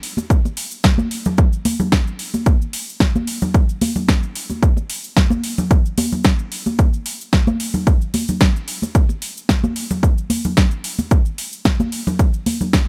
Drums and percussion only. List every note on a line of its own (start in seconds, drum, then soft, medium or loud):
0.03 open hi-hat loud
0.17 muted conga medium
0.17 high conga medium
0.17 cabasa medium
0.30 kick loud
0.30 cabasa medium
0.45 muted conga soft
0.45 cabasa soft
0.57 open hi-hat loud
0.71 cabasa medium
0.84 kick loud
0.84 snare loud
0.84 cabasa medium
0.98 high conga medium
0.98 cabasa soft
1.11 open hi-hat loud
1.25 low conga loud
1.25 cabasa medium
1.38 kick loud
1.38 cabasa medium
1.53 cabasa soft
1.65 open hi-hat loud
1.65 high conga loud
1.80 low conga medium
1.80 cabasa medium
1.92 kick loud
1.92 snare loud
1.92 cabasa medium
2.07 cabasa soft
2.19 open hi-hat loud
2.34 muted conga soft
2.34 high conga medium
2.34 cabasa medium
2.46 kick loud
2.46 cabasa medium
2.62 cabasa soft
2.73 open hi-hat loud
2.89 cabasa medium
3.00 kick loud
3.00 snare loud
3.00 cabasa medium
3.16 high conga medium
3.16 cabasa soft
3.27 open hi-hat loud
3.42 low conga loud
3.42 cabasa medium
3.54 kick loud
3.54 cabasa medium
3.69 cabasa soft
3.81 open hi-hat loud
3.81 high conga loud
3.96 low conga medium
3.96 cabasa medium
4.08 kick loud
4.08 snare loud
4.08 cabasa medium
4.23 cabasa soft
4.35 open hi-hat loud
4.50 muted conga soft
4.50 high conga medium
4.50 cabasa medium
4.63 kick loud
4.63 cabasa medium
4.77 muted conga soft
4.77 cabasa soft
4.90 open hi-hat loud
5.04 cabasa medium
5.17 kick loud
5.17 snare loud
5.17 cabasa medium
5.30 high conga loud
5.30 cabasa soft
5.44 open hi-hat loud
5.58 low conga medium
5.58 cabasa medium
5.71 kick loud
5.71 cabasa medium
5.86 cabasa soft
5.98 open hi-hat loud
5.98 high conga loud
6.12 low conga medium
6.12 cabasa medium
6.24 kick loud
6.24 snare loud
6.24 cabasa medium
6.39 cabasa soft
6.52 open hi-hat loud
6.66 muted conga soft
6.66 high conga medium
6.66 cabasa medium
6.79 kick loud
6.79 cabasa medium
6.93 cabasa soft
7.06 open hi-hat loud
7.21 cabasa medium
7.33 kick loud
7.33 snare loud
7.33 cabasa medium
7.47 high conga loud
7.47 cabasa soft
7.60 open hi-hat loud
7.74 low conga medium
7.74 cabasa medium
7.87 kick loud
7.87 cabasa medium
8.01 cabasa soft
8.14 open hi-hat loud
8.14 high conga medium
8.28 low conga medium
8.28 cabasa medium
8.40 kick loud
8.40 snare loud
8.40 cabasa medium
8.56 cabasa soft
8.68 open hi-hat loud
8.82 muted conga medium
8.82 high conga medium
8.82 cabasa medium
8.95 kick loud
8.95 cabasa medium
9.09 muted conga soft
9.09 cabasa soft
9.22 open hi-hat loud
9.37 cabasa medium
9.49 kick loud
9.49 snare loud
9.49 cabasa medium
9.64 high conga medium
9.64 cabasa soft
9.76 open hi-hat loud
9.90 low conga medium
9.90 cabasa medium
10.03 kick loud
10.03 cabasa medium
10.18 cabasa soft
10.30 open hi-hat loud
10.30 high conga medium
10.44 low conga medium
10.44 cabasa medium
10.57 kick loud
10.57 snare loud
10.57 cabasa medium
10.71 cabasa soft
10.84 open hi-hat loud
10.99 muted conga medium
10.99 high conga medium
10.99 cabasa medium
11.11 kick loud
11.11 cabasa medium
11.26 cabasa soft
11.38 open hi-hat loud
11.53 cabasa medium
11.65 kick loud
11.65 snare loud
11.65 cabasa medium
11.80 high conga loud
11.80 cabasa soft
11.92 open hi-hat loud
12.07 low conga loud
12.07 cabasa medium
12.19 kick loud
12.19 cabasa medium
12.34 cabasa soft
12.46 open hi-hat loud
12.46 high conga medium
12.61 low conga medium
12.61 cabasa medium
12.73 kick loud
12.73 snare loud
12.73 cabasa medium